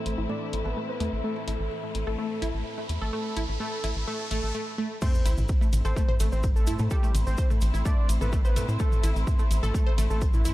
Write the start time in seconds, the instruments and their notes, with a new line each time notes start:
Already playing: synth drone A2 E3, string section A3 C4 E4, ambient pad A4 E5 C6, riser
0.06 analog synth bass A1, open hi-hat
0.18 analog synth bass A1, synth pluck E4
0.29 synth pluck A3, analog synth lead D5, mid tom
0.53 analog synth bass A1, open hi-hat
0.65 analog synth bass A1, synth pluck A4, analog synth lead B4, mid tom
0.77 synth pluck A3
0.89 analog synth lead B4, synth pluck C5
1.00 analog synth bass E2, synth pluck A3, mid tom, open hi-hat
1.13 analog synth bass A1
1.24 synth pluck A3, analog synth lead A4
1.36 mid tom
1.48 analog synth bass A1, synth pluck E4, open hi-hat
1.60 analog synth bass A1
1.71 mid tom
1.83 synth pluck A3
1.95 analog synth bass A1, ambient pad B5, open hi-hat
2.07 analog synth bass A1, synth pluck A4, analog synth lead A4, mid tom
2.18 synth pluck A3, analog synth lead A4
2.42 analog synth bass A1, synth pluck E4, mid tom, open hi-hat
2.54 analog synth bass A1
2.78 synth pluck A3, mid tom
2.89 analog synth bass E2, open hi-hat
3.01 analog synth bass A1, analog synth lead A4, synth pluck A4
3.13 synth pluck A3, analog synth lead A4, mid tom
3.37 analog synth bass A1, synth pluck E4, open hi-hat
3.49 analog synth bass A1, mid tom
3.60 synth pluck A3, analog synth lead A4
3.84 analog synth bass A1, synth pluck E4, mid tom, open hi-hat
3.96 analog synth bass A1
4.07 synth pluck A3, analog synth lead A4
4.20 mid tom
4.31 analog synth bass A1, synth pluck A3, analog synth lead A4, open hi-hat
4.43 analog synth bass A1
4.55 synth pluck A3
4.78 synth pluck A3
5.01 synth pluck A3, string section A3 C4 E4, analog synth lead C5, kick, mid tom, crash, sub drop, cabasa
5.15 cabasa
5.26 analog synth bass A1, synth pluck E4, open hi-hat, ride, cabasa
5.32 ambient pad C6
5.37 analog synth bass A1, mid tom, cabasa
5.49 kick, cabasa
5.61 synth pluck A3, cabasa
5.73 analog synth bass A1, mid tom, open hi-hat, ride, cabasa
5.85 analog synth bass A1, synth pluck A4, analog synth lead C5, cabasa
5.96 synth pluck A3, kick, cabasa
6.09 synth pluck C5, mid tom
6.20 analog synth bass A1, synth pluck A3, open hi-hat, ride, cabasa
6.32 analog synth bass A1, analog synth lead C5, cabasa
6.43 kick, mid tom, cabasa
6.56 analog synth lead A4, cabasa
6.67 analog synth bass A2, synth pluck E4, open hi-hat, ride, cabasa
6.79 analog synth bass A2, synth pluck A3, mid tom, cabasa
6.91 analog synth lead G4, synth pluck A4, kick, cabasa
7.03 synth pluck A3, cabasa
7.15 analog synth bass A1, mid tom, open hi-hat, ride, cabasa
7.27 analog synth bass A1, analog synth lead C5, cabasa
7.38 synth pluck C5, kick, cabasa
7.50 synth pluck A3, mid tom, cabasa
7.61 analog synth bass A1, open hi-hat, ride, cabasa
7.74 analog synth bass A1, synth pluck E4, cabasa
7.85 synth pluck A3, analog synth lead D5, kick, mid tom, cabasa
8.09 analog synth bass A1, open hi-hat, ride, cabasa
8.21 analog synth bass A1, synth pluck A4, analog synth lead B4, mid tom, cabasa
8.33 synth pluck A3, kick, cabasa
8.45 analog synth lead B4, synth pluck C5, cabasa
8.56 analog synth bass A2, synth pluck A3, mid tom, open hi-hat, ride, cabasa
8.68 analog synth bass A2, cabasa
8.79 synth pluck A3, analog synth lead A4, kick, cabasa
8.92 mid tom, cabasa
9.04 analog synth bass A1, synth pluck E4, open hi-hat, ride, cabasa
9.16 analog synth bass A1, cabasa
9.27 kick, mid tom, cabasa
9.39 synth pluck A3, cabasa
9.51 analog synth bass A1, open hi-hat, ride, cabasa
9.63 analog synth bass A1, analog synth lead A4, synth pluck A4, mid tom, cabasa
9.74 synth pluck A3, kick, cabasa
9.86 synth pluck C5
9.98 analog synth bass A1, synth pluck A3, mid tom, open hi-hat, ride, cabasa
10.10 analog synth bass A1, analog synth lead A4, cabasa
10.21 kick, cabasa
10.34 analog synth lead E4, mid tom, cabasa
10.45 analog synth bass A2, synth pluck E4, open hi-hat, ride, cabasa